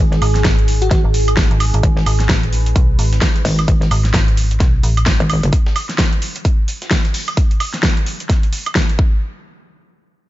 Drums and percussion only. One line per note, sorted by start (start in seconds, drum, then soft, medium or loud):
0.13 snare soft
0.13 closed hi-hat soft
0.22 open hi-hat loud
0.22 high woodblock medium
0.22 shaker medium
0.35 snare soft
0.35 closed hi-hat soft
0.35 shaker soft
0.45 kick loud
0.45 snare loud
0.45 closed hi-hat medium
0.45 shaker medium
0.59 closed hi-hat soft
0.68 open hi-hat loud
0.68 shaker medium
0.82 closed hi-hat medium
0.82 shaker soft
0.91 kick loud
0.91 snare soft
0.91 closed hi-hat medium
0.91 shaker medium
0.91 shaker soft
1.14 open hi-hat loud
1.14 shaker medium
1.28 closed hi-hat medium
1.28 closed hi-hat soft
1.28 high woodblock medium
1.28 shaker soft
1.37 kick loud
1.37 snare loud
1.37 closed hi-hat medium
1.37 shaker medium
1.37 shaker soft
1.51 closed hi-hat soft
1.60 open hi-hat loud
1.60 high woodblock medium
1.60 shaker medium
1.74 closed hi-hat soft
1.74 shaker soft
1.83 kick loud
1.83 closed hi-hat medium
1.83 shaker medium
1.83 shaker soft
1.97 snare medium
2.06 open hi-hat loud
2.06 high woodblock medium
2.06 shaker medium
2.20 snare soft
2.20 closed hi-hat medium
2.20 shaker soft
2.29 kick loud
2.29 snare loud
2.29 closed hi-hat medium
2.29 shaker medium
2.43 closed hi-hat soft
2.53 open hi-hat loud
2.53 shaker medium
2.66 closed hi-hat medium
2.66 shaker soft
2.76 kick loud
2.76 closed hi-hat medium
2.76 shaker medium
2.76 shaker soft
2.99 open hi-hat loud
2.99 shaker medium
3.13 snare soft
3.13 closed hi-hat medium
3.13 shaker soft
3.22 kick loud
3.22 snare loud
3.22 closed hi-hat medium
3.22 shaker medium
3.22 shaker soft
3.36 closed hi-hat soft
3.45 open hi-hat medium
3.45 open hi-hat loud
3.45 shaker medium
3.59 closed hi-hat medium
3.59 high woodblock medium
3.59 shaker soft
3.68 kick loud
3.68 closed hi-hat medium
3.68 shaker medium
3.68 shaker soft
3.82 snare soft
3.82 closed hi-hat soft
3.91 open hi-hat loud
3.91 high woodblock medium
3.91 shaker medium
4.05 snare soft
4.05 closed hi-hat medium
4.05 shaker soft
4.14 kick loud
4.14 snare loud
4.14 closed hi-hat medium
4.14 shaker medium
4.28 closed hi-hat soft
4.37 open hi-hat loud
4.37 shaker medium
4.51 closed hi-hat medium
4.51 shaker soft
4.60 kick loud
4.60 snare soft
4.60 closed hi-hat medium
4.60 shaker medium
4.60 shaker soft
4.83 open hi-hat loud
4.83 shaker medium
4.97 closed hi-hat soft
4.97 high woodblock medium
4.97 shaker soft
5.06 kick loud
5.06 snare loud
5.06 closed hi-hat medium
5.06 shaker medium
5.20 closed hi-hat soft
5.30 open hi-hat loud
5.30 high woodblock medium
5.30 shaker medium
5.43 closed hi-hat medium
5.43 closed hi-hat soft
5.43 shaker soft
5.53 kick loud
5.53 closed hi-hat medium
5.53 shaker medium
5.53 shaker soft
5.66 snare medium
5.76 open hi-hat loud
5.76 high woodblock medium
5.76 shaker medium
5.89 snare soft
5.89 closed hi-hat medium
5.89 shaker soft
5.98 kick loud
5.98 snare loud
5.98 closed hi-hat medium
5.98 shaker medium
5.98 shaker soft
6.13 closed hi-hat soft
6.22 open hi-hat loud
6.22 shaker medium
6.36 closed hi-hat medium
6.36 shaker soft
6.45 kick loud
6.45 closed hi-hat medium
6.45 shaker medium
6.45 shaker soft
6.68 open hi-hat loud
6.68 shaker medium
6.82 snare soft
6.82 closed hi-hat medium
6.82 shaker soft
6.91 kick loud
6.91 snare loud
6.91 closed hi-hat medium
6.91 shaker medium
7.05 closed hi-hat soft
7.14 open hi-hat loud
7.14 open hi-hat medium
7.14 shaker medium
7.28 closed hi-hat medium
7.28 high woodblock medium
7.28 shaker soft
7.37 kick loud
7.37 closed hi-hat medium
7.37 shaker soft
7.51 closed hi-hat soft
7.60 open hi-hat loud
7.60 high woodblock medium
7.60 shaker medium
7.74 snare soft
7.74 closed hi-hat medium
7.74 shaker soft
7.83 kick loud
7.83 snare loud
7.83 closed hi-hat medium
7.83 shaker soft
7.97 closed hi-hat soft
8.06 open hi-hat loud
8.06 shaker medium
8.20 closed hi-hat medium
8.20 shaker soft
8.29 kick loud
8.29 snare soft
8.29 closed hi-hat medium
8.29 shaker soft
8.43 closed hi-hat soft
8.53 open hi-hat loud
8.53 shaker medium
8.66 closed hi-hat medium
8.66 high woodblock medium
8.66 shaker soft
8.75 kick loud
8.75 snare loud
8.75 closed hi-hat medium
8.89 closed hi-hat soft
8.99 kick loud